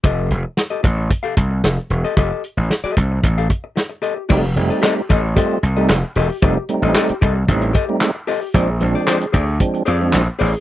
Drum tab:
CC |----------------|----------------|x---------------|----------------|
HH |x-x-x-x-x-x-x-x-|x-x-x-x-xxx-x-x-|--x-x-x-x-x-x-o-|x-x-xxx-xxx-x-o-|
CP |----------------|----------------|----x-------x---|----x-------x---|
SD |----o-------o---|----o-------o---|----o-------o---|----o-------o---|
BD |o-----o-o-o-----|o-----o-o-o-----|o-----o-o-------|o-----o-o-o-----|

CC |----------------|
HH |x-x-xxx-xxx-x-o-|
CP |----x-------x---|
SD |----o-------o---|
BD |o-----o-o-------|